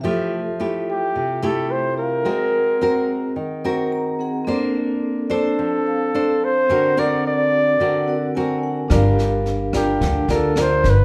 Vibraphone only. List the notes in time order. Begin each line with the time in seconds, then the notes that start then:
0.01 G4 E5
0.05 F4 A4
1.96 E4 G4 A4 F5
2.23 C4 G#4 A#4
2.29 F#5
3.92 A#5
4.19 C4 G#4 A#4 F#5
4.45 C4 A4
4.51 D5
5.84 C4 A4 F5
6.66 C4 F#4
6.70 A#4 D5
8.06 C4 F#4 A#4 D5 F#5
8.35 G#5
8.63 F#5
8.88 D4 G4 A#4
8.94 F5